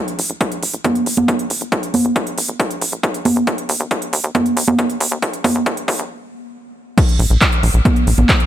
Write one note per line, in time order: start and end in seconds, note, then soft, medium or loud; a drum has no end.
0.08 closed hi-hat soft
0.19 0.26 A#1 medium
0.19 open hi-hat loud
0.30 0.37 A#1 medium
0.30 closed hi-hat soft
0.41 kick loud
0.41 closed hi-hat medium
0.52 closed hi-hat soft
0.63 0.70 A#1 medium
0.63 open hi-hat loud
0.74 0.81 A#1 medium
0.74 closed hi-hat soft
0.84 kick loud
0.84 closed hi-hat medium
0.84 high conga medium
0.95 closed hi-hat soft
1.06 1.13 A#1 medium
1.06 open hi-hat loud
1.17 1.24 A#1 medium
1.17 closed hi-hat soft
1.17 high conga medium
1.28 kick loud
1.28 closed hi-hat medium
1.39 closed hi-hat soft
1.50 1.57 A#1 medium
1.50 open hi-hat loud
1.61 1.68 A#1 medium
1.61 closed hi-hat soft
1.72 kick loud
1.72 closed hi-hat medium
1.83 closed hi-hat soft
1.94 2.01 A#1 medium
1.94 open hi-hat loud
1.94 high conga medium
2.05 2.12 A#1 medium
2.05 closed hi-hat soft
2.16 kick loud
2.16 closed hi-hat medium
2.27 closed hi-hat soft
2.38 2.45 A#1 medium
2.38 open hi-hat loud
2.49 2.56 A#1 medium
2.49 closed hi-hat soft
2.60 kick loud
2.60 closed hi-hat medium
2.71 closed hi-hat soft
2.81 2.88 A#1 medium
2.81 open hi-hat loud
2.92 2.99 A#1 medium
2.92 closed hi-hat soft
3.03 kick loud
3.03 closed hi-hat medium
3.14 closed hi-hat soft
3.25 3.32 A#1 loud
3.25 open hi-hat loud
3.25 high conga medium
3.36 3.43 A#1 medium
3.36 closed hi-hat soft
3.47 kick loud
3.47 closed hi-hat medium
3.58 closed hi-hat soft
3.69 3.76 D#2 medium
3.69 open hi-hat loud
3.80 3.87 D#2 medium
3.80 closed hi-hat soft
3.91 kick loud
3.91 closed hi-hat medium
4.02 closed hi-hat soft
4.13 4.20 D#2 medium
4.13 open hi-hat loud
4.24 4.31 D#2 medium
4.24 closed hi-hat soft
4.35 kick loud
4.35 closed hi-hat medium
4.35 high conga medium
4.46 closed hi-hat soft
4.57 4.64 D#2 medium
4.57 open hi-hat loud
4.68 4.75 D#2 medium
4.68 closed hi-hat soft
4.68 high conga medium
4.79 kick loud
4.79 closed hi-hat medium
4.90 closed hi-hat soft
5.00 5.07 D#2 medium
5.00 open hi-hat loud
5.11 5.18 D#2 medium
5.11 closed hi-hat soft
5.22 kick loud
5.22 closed hi-hat medium
5.33 closed hi-hat soft
5.44 5.51 D#2 medium
5.44 kick loud
5.44 open hi-hat loud
5.44 high conga medium
5.55 5.62 D#2 medium
5.66 kick loud
5.66 closed hi-hat medium
5.77 closed hi-hat soft
5.88 5.95 D#2 medium
5.88 kick medium
5.88 open hi-hat loud
5.99 6.06 D#2 medium
5.99 closed hi-hat soft
6.98 kick loud
6.98 closed hi-hat medium
6.98 crash loud
7.09 closed hi-hat soft
7.19 7.27 A#1 loud
7.19 open hi-hat loud
7.30 7.37 A#1 medium
7.30 closed hi-hat soft
7.41 kick loud
7.41 clap loud
7.41 closed hi-hat medium
7.52 closed hi-hat soft
7.63 7.70 A#1 loud
7.63 open hi-hat loud
7.74 7.81 A#1 medium
7.74 closed hi-hat soft
7.85 kick loud
7.85 closed hi-hat medium
7.85 high conga medium
7.96 closed hi-hat soft
8.07 8.14 A#1 medium
8.07 open hi-hat loud
8.18 8.25 A#1 medium
8.18 high conga medium
8.29 kick loud
8.29 clap loud
8.29 closed hi-hat medium
8.40 closed hi-hat soft